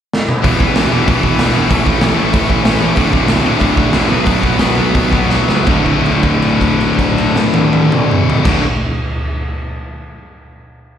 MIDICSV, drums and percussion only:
0, 0, Header, 1, 2, 480
1, 0, Start_track
1, 0, Key_signature, 2, "major"
1, 0, Tempo, 316456
1, 673, Time_signature, 4, 2, 24, 8
1, 5476, Tempo, 335570
1, 7396, Tempo, 372439
1, 15168, End_track
2, 0, Start_track
2, 0, Title_t, "Drums"
2, 204, Note_on_c, 9, 38, 71
2, 356, Note_off_c, 9, 38, 0
2, 433, Note_on_c, 9, 47, 82
2, 584, Note_off_c, 9, 47, 0
2, 667, Note_on_c, 9, 46, 59
2, 672, Note_on_c, 9, 36, 116
2, 819, Note_off_c, 9, 46, 0
2, 824, Note_off_c, 9, 36, 0
2, 916, Note_on_c, 9, 36, 91
2, 1068, Note_off_c, 9, 36, 0
2, 1146, Note_on_c, 9, 46, 61
2, 1151, Note_on_c, 9, 38, 120
2, 1298, Note_off_c, 9, 46, 0
2, 1302, Note_off_c, 9, 38, 0
2, 1636, Note_on_c, 9, 36, 113
2, 1640, Note_on_c, 9, 46, 70
2, 1788, Note_off_c, 9, 36, 0
2, 1792, Note_off_c, 9, 46, 0
2, 1871, Note_on_c, 9, 36, 87
2, 2022, Note_off_c, 9, 36, 0
2, 2107, Note_on_c, 9, 46, 64
2, 2112, Note_on_c, 9, 38, 105
2, 2259, Note_off_c, 9, 46, 0
2, 2263, Note_off_c, 9, 38, 0
2, 2583, Note_on_c, 9, 46, 65
2, 2589, Note_on_c, 9, 36, 103
2, 2734, Note_off_c, 9, 46, 0
2, 2740, Note_off_c, 9, 36, 0
2, 2829, Note_on_c, 9, 36, 86
2, 2981, Note_off_c, 9, 36, 0
2, 3050, Note_on_c, 9, 46, 61
2, 3054, Note_on_c, 9, 38, 123
2, 3202, Note_off_c, 9, 46, 0
2, 3206, Note_off_c, 9, 38, 0
2, 3534, Note_on_c, 9, 46, 61
2, 3546, Note_on_c, 9, 36, 120
2, 3686, Note_off_c, 9, 46, 0
2, 3698, Note_off_c, 9, 36, 0
2, 3788, Note_on_c, 9, 36, 78
2, 3940, Note_off_c, 9, 36, 0
2, 4020, Note_on_c, 9, 46, 66
2, 4024, Note_on_c, 9, 38, 107
2, 4171, Note_off_c, 9, 46, 0
2, 4176, Note_off_c, 9, 38, 0
2, 4484, Note_on_c, 9, 46, 59
2, 4508, Note_on_c, 9, 36, 106
2, 4636, Note_off_c, 9, 46, 0
2, 4660, Note_off_c, 9, 36, 0
2, 4749, Note_on_c, 9, 36, 96
2, 4900, Note_off_c, 9, 36, 0
2, 4976, Note_on_c, 9, 46, 61
2, 4981, Note_on_c, 9, 38, 124
2, 5128, Note_off_c, 9, 46, 0
2, 5132, Note_off_c, 9, 38, 0
2, 5462, Note_on_c, 9, 46, 64
2, 5480, Note_on_c, 9, 36, 108
2, 5605, Note_off_c, 9, 46, 0
2, 5623, Note_off_c, 9, 36, 0
2, 5710, Note_on_c, 9, 36, 81
2, 5853, Note_off_c, 9, 36, 0
2, 5930, Note_on_c, 9, 46, 70
2, 5934, Note_on_c, 9, 38, 106
2, 6073, Note_off_c, 9, 46, 0
2, 6077, Note_off_c, 9, 38, 0
2, 6402, Note_on_c, 9, 46, 63
2, 6418, Note_on_c, 9, 36, 110
2, 6545, Note_off_c, 9, 46, 0
2, 6561, Note_off_c, 9, 36, 0
2, 6656, Note_on_c, 9, 36, 89
2, 6799, Note_off_c, 9, 36, 0
2, 6878, Note_on_c, 9, 46, 60
2, 6882, Note_on_c, 9, 38, 108
2, 7021, Note_off_c, 9, 46, 0
2, 7025, Note_off_c, 9, 38, 0
2, 7392, Note_on_c, 9, 36, 119
2, 7392, Note_on_c, 9, 46, 66
2, 7521, Note_off_c, 9, 46, 0
2, 7522, Note_off_c, 9, 36, 0
2, 7620, Note_on_c, 9, 36, 81
2, 7749, Note_off_c, 9, 36, 0
2, 7844, Note_on_c, 9, 38, 68
2, 7972, Note_off_c, 9, 38, 0
2, 8086, Note_on_c, 9, 38, 91
2, 8214, Note_off_c, 9, 38, 0
2, 8316, Note_on_c, 9, 49, 89
2, 8324, Note_on_c, 9, 36, 102
2, 8444, Note_off_c, 9, 49, 0
2, 8453, Note_off_c, 9, 36, 0
2, 8565, Note_on_c, 9, 36, 61
2, 8565, Note_on_c, 9, 49, 46
2, 8694, Note_off_c, 9, 36, 0
2, 8694, Note_off_c, 9, 49, 0
2, 8817, Note_on_c, 9, 57, 44
2, 8946, Note_off_c, 9, 57, 0
2, 9038, Note_on_c, 9, 49, 48
2, 9047, Note_on_c, 9, 36, 68
2, 9167, Note_off_c, 9, 49, 0
2, 9176, Note_off_c, 9, 36, 0
2, 9290, Note_on_c, 9, 57, 51
2, 9418, Note_off_c, 9, 57, 0
2, 9535, Note_on_c, 9, 36, 58
2, 9544, Note_on_c, 9, 49, 50
2, 9664, Note_off_c, 9, 36, 0
2, 9673, Note_off_c, 9, 49, 0
2, 9785, Note_on_c, 9, 57, 50
2, 9914, Note_off_c, 9, 57, 0
2, 10019, Note_on_c, 9, 36, 66
2, 10022, Note_on_c, 9, 49, 52
2, 10147, Note_off_c, 9, 36, 0
2, 10151, Note_off_c, 9, 49, 0
2, 10268, Note_on_c, 9, 57, 54
2, 10396, Note_off_c, 9, 57, 0
2, 10499, Note_on_c, 9, 38, 93
2, 10628, Note_off_c, 9, 38, 0
2, 10728, Note_on_c, 9, 48, 103
2, 10857, Note_off_c, 9, 48, 0
2, 10974, Note_on_c, 9, 48, 93
2, 11103, Note_off_c, 9, 48, 0
2, 11223, Note_on_c, 9, 47, 110
2, 11351, Note_off_c, 9, 47, 0
2, 11469, Note_on_c, 9, 45, 88
2, 11598, Note_off_c, 9, 45, 0
2, 11705, Note_on_c, 9, 43, 107
2, 11834, Note_off_c, 9, 43, 0
2, 11907, Note_on_c, 9, 49, 106
2, 11908, Note_on_c, 9, 36, 117
2, 11911, Note_on_c, 9, 38, 112
2, 12036, Note_off_c, 9, 49, 0
2, 12037, Note_off_c, 9, 36, 0
2, 12040, Note_off_c, 9, 38, 0
2, 15168, End_track
0, 0, End_of_file